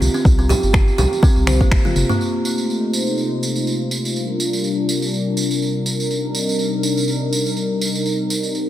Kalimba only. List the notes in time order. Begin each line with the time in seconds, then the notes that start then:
0.14 C4
0.39 C4
0.49 G4
0.74 G4
0.98 G4
1.23 C4
1.47 C5
1.61 A#3
1.85 F4
2.09 A#3